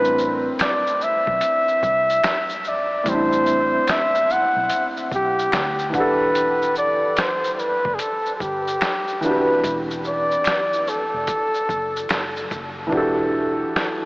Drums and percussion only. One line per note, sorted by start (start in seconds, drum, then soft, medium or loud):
0.05 shaker soft
0.18 shaker soft
0.59 finger snap medium
0.59 snare loud
0.59 closed hi-hat medium
0.59 shaker medium
0.87 shaker soft
1.01 shaker soft
1.27 kick medium
1.41 closed hi-hat medium
1.41 shaker medium
1.68 shaker soft
1.83 kick medium
1.83 shaker soft
2.10 shaker soft
2.23 finger snap medium
2.23 snare loud
2.23 closed hi-hat medium
2.23 shaker medium
2.50 shaker soft
2.64 shaker soft
3.06 kick loud
3.06 closed hi-hat medium
3.06 shaker medium
3.32 shaker soft
3.46 shaker soft
3.87 finger snap medium
3.87 snare loud
3.87 closed hi-hat medium
3.87 shaker medium
3.89 finger snap medium
4.15 shaker soft
4.30 shaker soft
4.70 closed hi-hat medium
4.70 shaker medium
4.97 shaker soft
5.12 kick medium
5.12 shaker soft
5.39 shaker soft
5.52 finger snap medium
5.52 snare loud
5.52 closed hi-hat medium
5.52 shaker medium
5.79 shaker soft
5.94 kick loud
5.94 shaker medium
6.35 closed hi-hat medium
6.35 shaker medium
6.62 shaker soft
6.75 shaker soft
7.17 finger snap medium
7.17 snare loud
7.17 closed hi-hat medium
7.17 shaker medium
7.19 finger snap medium
7.44 shaker soft
7.59 shaker soft
7.85 kick medium
7.99 closed hi-hat medium
7.99 shaker medium
8.26 shaker soft
8.40 kick medium
8.40 shaker soft
8.68 shaker medium
8.81 finger snap medium
8.81 snare loud
8.81 closed hi-hat medium
8.81 shaker medium
9.08 shaker soft
9.22 shaker soft
9.64 kick loud
9.64 closed hi-hat medium
9.64 shaker medium
9.91 shaker soft
10.04 shaker soft
10.31 shaker soft
10.44 finger snap medium
10.44 snare loud
10.44 closed hi-hat medium
10.44 shaker medium
10.47 finger snap medium
10.73 shaker soft
10.87 shaker soft
11.27 kick medium
11.27 closed hi-hat medium
11.27 shaker medium
11.54 shaker soft
11.69 kick medium
11.69 shaker soft
11.97 shaker medium
12.09 finger snap medium
12.09 snare loud
12.09 closed hi-hat medium
12.09 shaker medium
12.11 finger snap medium
12.36 shaker soft
12.51 kick loud
12.51 shaker medium
12.92 kick loud
13.76 finger snap medium
13.76 snare loud